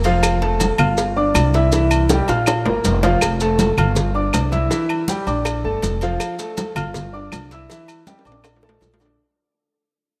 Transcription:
Already playing: F1
0.04 F3 F4 F5, cowbell, high conga, low agogo, maracas
0.23 cowbell, high conga, low agogo, claves, maracas
0.42 A3 A4 A5, cowbell, high conga
0.60 cowbell, high conga, low timbale, low agogo, maracas
0.78 G1 F4 F5 F6, low conga, low agogo, claves, maracas
0.97 cowbell, high conga, maracas
1.16 D4 D5 D6, high conga
1.34 C2, cowbell, high conga, low timbale, low agogo, claves, maracas
1.54 E4 E5 E6, cowbell, maracas
1.72 E3 E4 E5, cowbell, high bongo, high conga, low agogo, maracas
1.91 high conga, low agogo, claves, maracas
2.09 G3 G4 G5, cowbell, high bongo, high conga, high timbale, maracas
2.28 A#1 F4 F5 F6, low bongo, high conga, low agogo, maracas
2.46 cowbell, low bongo, high conga, low agogo, claves, maracas
2.65 G1 A#3 A#4 A#5, low bongo, high conga, low timbale
2.84 F1, cowbell, high conga, low timbale, low agogo, maracas
3.03 F3 F4 F5, cowbell, low bongo, high conga, low timbale, low agogo, maracas
3.21 F1, cowbell, high conga, low agogo, claves, maracas
3.40 A3 A4 A5, cowbell, high conga, maracas
3.59 cowbell, high conga, low timbale, low agogo, maracas
3.77 G1 F4 F5 F6, low conga, low agogo, claves, maracas
3.95 cowbell, high conga, low conga, maracas
4.14 D4 D5 D6, high conga
4.33 C2, cowbell, high conga, low timbale, low agogo, claves, maracas
4.52 E4 E5 E6, cowbell, high conga, maracas
4.70 E3 E4 E5, cowbell, low agogo, maracas
4.89 high conga, low agogo, claves
5.08 G3 G4 G5, cowbell, high conga, low timbale, maracas
5.27 A#1 D4 D5 D6, high conga, low agogo, maracas
5.45 cowbell, high conga, low agogo, claves, maracas
5.64 G1 A3 A4 A5, high conga
5.82 F1, cowbell, high conga, low timbale, low agogo, maracas
6.01 F3 F4 F5, cowbell, low agogo, maracas
6.20 cowbell, high conga, low agogo, claves, maracas
6.38 A3 A4 A5, cowbell, high conga, maracas
6.57 cowbell, high conga, low timbale, low agogo, maracas
6.75 G1 F4 F5 F6, low conga, low agogo, claves, maracas
6.94 cowbell, high conga, low conga, maracas
7.13 D4 D5 D6, high conga
7.32 C2, cowbell, high conga, low timbale, low agogo, claves, maracas
7.51 E4 E5 E6, cowbell, maracas
7.70 E3 E4 E5, cowbell, high conga, low agogo, maracas
7.88 high conga, low agogo, claves, maracas
8.07 G3 G4 G5, cowbell, high conga, high timbale, maracas
8.19 high timbale
8.25 A#1 D4 D5 D6, high conga, low agogo, maracas
8.32 high timbale
8.44 cowbell, high bongo, high conga, high timbale, low agogo, claves, maracas
8.56 low timbale
8.63 A3 A4 A5, high bongo, high conga
8.69 low timbale
8.81 A#1, cowbell, low bongo, high conga, low timbale, low agogo, maracas
8.94 low timbale
9.00 D3 D4 D5, cowbell, low bongo, high conga, low agogo, maracas
9.06 low timbale

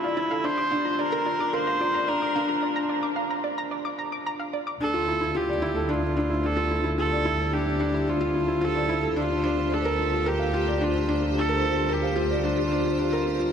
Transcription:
Already playing: D4 E4 F4 G4 A4 C5 D5
0.04 D5 F5
0.17 E4 D5
0.31 A4 F5
0.44 D4 C5 D5
0.58 D4 D6
0.71 D4 F5
0.85 F4 A#5
0.93 C5
0.99 D4 A#4 D5
1.12 A#4 A#5
1.26 F4 D5
1.39 F4 D6
1.53 A#4 C5 F5
1.67 F5 A#5
1.80 F4 D5
1.94 D5 A#5
2.08 D4 A#4 D5
2.22 D4 D6
2.36 D4 F5
2.49 F4 A#5
2.63 D5
2.76 A#5
2.89 D5
3.03 D6
3.16 F5
3.31 A#5
3.44 D5
3.58 A#5
3.71 D5
3.85 D6
3.99 A#5
4.12 D6
4.27 A#5
4.40 F5
4.53 D5
4.67 D6
4.80 D2 D4 A4
4.94 F4
5.08 E4
5.14 G4
5.21 E4 C5
5.35 F4 G4
5.49 D5
5.62 E4
5.75 A4
5.89 D4 F4
6.03 D4
6.17 D4
6.30 E4
6.43 D4 A4
6.57 F4
6.71 E4
6.84 E4
6.98 F4 A4
7.12 D5
7.25 E4
7.39 A4
7.53 D4 G4
7.66 D4
7.80 D4
7.94 E4
8.07 D4 F4
8.21 F4
8.34 E4
8.48 E4
8.61 F4 A4
8.75 D5
8.89 E4
9.03 A4
9.16 D2 D4 F4
9.30 D4
9.44 D4
9.57 F4
9.72 D4 A4
9.85 A#4
9.99 F4
10.13 F4
10.26 G4 A#4
10.39 F5
10.54 F4
10.68 D5
10.81 D4 F4
10.95 D4
11.08 D4
11.22 F4
11.35 D4 A4
11.49 A#4
11.62 F4
11.76 F4
11.89 G4 A#4
12.03 F5
12.16 F4
12.30 D5
12.38 G4
12.44 D4 F4
12.58 D4
12.72 D4
12.85 F4
12.98 D4 F4
13.13 A#4
13.26 F4
13.40 F4

